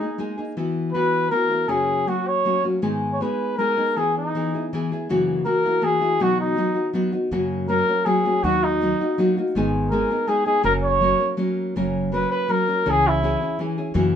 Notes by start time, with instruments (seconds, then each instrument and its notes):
Already playing: trumpet D#4
0.01 nylon-string guitar A#3 D#4 G#4
0.18 nylon-string guitar G#3 A#3 D#4 G#4
0.38 nylon-string guitar A#3 D#4 G#4
0.57 nylon-string guitar E3 B3 E4 F#4
0.93 nylon-string guitar E3 B3 E4 F#4, trumpet B4
1.31 nylon-string guitar E3 B3 E4 F#4, trumpet A#4
1.50 nylon-string guitar B3 E4 F#4
1.68 nylon-string guitar F#2 C#3 F#3 A#3 C#4 F#4, trumpet G#4
2.07 nylon-string guitar F#3 A#3 C#4 F#4, trumpet F#4
2.28 trumpet C#5
2.45 nylon-string guitar F#3 A#3 C#4 F#4
2.64 nylon-string guitar F#3 A#3 C#4 F#4
2.82 nylon-string guitar G#2 D#3 G#3 B3 D#4 G#4
3.13 trumpet C#5
3.20 nylon-string guitar G#3 B3 D#4 G#4, trumpet B4
3.58 nylon-string guitar G#3 B3 D#4 G#4, trumpet A#4
3.77 nylon-string guitar G#3 B3 D#4 G#4
3.96 nylon-string guitar E3 B3 E4 G#4, trumpet G#4
4.17 trumpet D#4
4.35 nylon-string guitar E3 B3 E4 G#4
4.54 nylon-string guitar B3 E4 G#4
4.73 nylon-string guitar E3 B3 E4 G#4
4.92 nylon-string guitar B3 E4 G#4
5.09 nylon-string guitar F#2 C#3 E3 A#3 E4 F#4
5.45 nylon-string guitar E3 A#3 E4 F#4, trumpet A#4
5.65 nylon-string guitar E3 A#3 E4 F#4
5.81 nylon-string guitar E3 A#3 E4 F#4, trumpet G#4
6.01 nylon-string guitar E3 A#3 E4 F#4
6.20 nylon-string guitar B2 F#3 B3 D#4 F#4, trumpet F#4
6.41 trumpet D#4
6.56 nylon-string guitar F#3 B3 D#4 F#4
6.75 nylon-string guitar B3 D#4 F#4
6.93 nylon-string guitar F#3 B3 D#4 F#4
7.12 nylon-string guitar B3 D#4 F#4
7.31 upright bass F#2, nylon-string guitar F#2 C#3 F#3 A#3 C#4 F#4
7.68 nylon-string guitar F#3 A#3 C#4 F#4, trumpet A#4
7.89 nylon-string guitar F#3 A#3 C#4 F#4
8.05 nylon-string guitar F#3 A#3 C#4 F#4, trumpet G#4
8.25 nylon-string guitar F#3 A#3 C#4 F#4
8.43 upright bass D#2, nylon-string guitar D#3 F#3 A#3 D#4 F#4, trumpet F#4
8.64 trumpet D#4
8.81 nylon-string guitar F#3 A#3 D#4 F#4
9.01 nylon-string guitar A#3 D#4 F#4
9.18 nylon-string guitar F#3 A#3 D#4 F#4
9.37 nylon-string guitar A#3 D#4 F#4
9.55 upright bass G#1, nylon-string guitar G#2 D#3 G#3 B3 D#4 G#4
9.90 nylon-string guitar G#3 B3 D#4 G#4, trumpet A#4
10.10 nylon-string guitar G#3 B3 D#4 G#4
10.27 nylon-string guitar G#3 B3 D#4 G#4, trumpet G#4
10.46 nylon-string guitar G#3 B3 D#4 G#4, trumpet G#4
10.63 upright bass F#1, nylon-string guitar F#2 C#3 F#3 A#3 C#4 A#4, trumpet A#4
10.83 trumpet C#5
11.01 nylon-string guitar F#3 A#3 C#4 A#4
11.20 nylon-string guitar F#3 A#3 C#4 A#4
11.37 nylon-string guitar F#3 A#3 C#4 A#4
11.76 upright bass F#1, nylon-string guitar F#2 C#3 F#3 A#3 C#4 A#4
12.12 nylon-string guitar F#3 A#3 C#4 A#4, trumpet B4
12.31 trumpet B4
12.48 nylon-string guitar F#3 A#3 C#4 A#4, trumpet A#4
12.68 nylon-string guitar F#3 A#3 C#4 A#4
12.85 upright bass C#2, nylon-string guitar C#3 E3 C#4 E4 G#4
12.90 trumpet G#4
13.07 trumpet E4
13.23 nylon-string guitar E3 C#4 E4 G#4
13.41 nylon-string guitar C#4 E4 G#4
13.59 nylon-string guitar E3 C#4 E4 G#4
13.78 nylon-string guitar C#4 E4 G#4
13.94 nylon-string guitar F#2 C#3 E3 A#3 E4 F#4, upright bass F#2